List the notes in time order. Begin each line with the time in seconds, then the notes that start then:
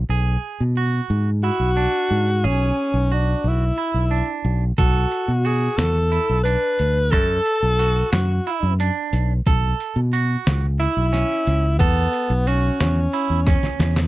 0.09 B1 G#4
0.60 B2
0.77 F#4
1.10 G#2
1.43 E4 F#4
1.60 B1
1.77 D4
2.11 G#2
2.44 B1 C#4 G#4
2.94 B1
3.12 D4 F#4
3.44 B1 E4
3.78 E4
3.94 B1
4.11 D4
4.45 B1
4.78 B1 F#4 A4, kick, closed hi-hat
5.12 closed hi-hat
5.28 B2
5.45 F#4 G#4, closed hi-hat
5.77 E2 A4, snare, closed hi-hat
6.12 E4, closed hi-hat
6.29 B1
6.43 D4 B4, closed hi-hat
6.79 D2, closed hi-hat
7.11 F#2 A4, kick, closed hi-hat
7.46 closed hi-hat
7.63 B1
7.79 F#4, closed hi-hat
8.12 F#2 F#4, snare, closed hi-hat
8.47 E4, closed hi-hat
8.63 F#2
8.80 D4, closed hi-hat
9.13 B1, closed hi-hat
9.46 B1 A4, kick, closed hi-hat
9.80 closed hi-hat
9.96 B2
10.13 F#4, closed hi-hat
10.47 C#2, snare, closed hi-hat
10.80 E4, closed hi-hat
10.97 B1
11.13 C#4, snare, closed hi-hat
11.47 C#2, closed hi-hat
11.79 E2 B3 A4, kick, closed hi-hat
12.13 closed hi-hat
12.30 B1
12.47 C#4 F#4, closed hi-hat
12.80 E2 C#4, snare, closed hi-hat
13.13 E4, closed hi-hat
13.30 E2
13.47 C#4, kick, snare, closed hi-hat
13.63 snare
13.79 E2, snare, closed hi-hat
13.96 snare